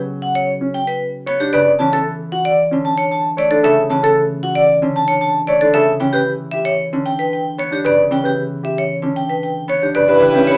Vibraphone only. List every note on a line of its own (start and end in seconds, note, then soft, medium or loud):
0.22 0.39 F#5 medium
0.35 0.52 C#5 medium
0.74 0.91 G5 medium
0.88 1.04 B4 medium
1.27 1.44 C#5 medium
1.40 1.57 G4 medium
1.53 1.70 D5 medium
1.79 1.96 A5 medium
1.93 2.10 A4 medium
2.32 2.49 F#5 medium
2.45 2.62 D5 medium
2.85 3.02 A5 medium
2.98 3.15 C#5 medium
3.11 3.28 A5 medium
3.38 3.55 D5 medium
3.51 3.67 A4 medium
3.64 3.81 E5 medium
3.90 4.07 A5 medium
4.04 4.20 A4 medium
4.43 4.60 F#5 medium
4.55 4.73 D5 medium
4.96 5.12 A5 medium
5.08 5.25 C#5 medium
5.21 5.38 A5 medium
5.47 5.65 D5 medium
5.61 5.78 A4 medium
5.74 5.91 E5 medium
6.00 6.17 G5 medium
6.13 6.30 G4 medium
6.51 6.69 E5 medium
6.65 6.83 C#5 medium
7.06 7.23 G5 medium
7.19 7.36 B4 medium
7.33 7.49 G5 medium
7.59 7.76 C#5 medium
7.72 7.89 G4 medium
7.86 8.02 D5 medium
8.12 8.28 G5 medium
8.25 8.41 G4 soft
8.65 8.81 E5 medium
8.78 8.94 C#5 medium
9.16 9.33 G5 medium
9.29 9.46 B4 soft
9.43 9.60 G5 soft
9.69 9.86 C#5 medium
9.83 9.99 G4 medium
9.95 10.12 D5 medium
10.21 10.38 G5 medium
10.35 10.52 G4 medium
10.47 10.57 C#5 medium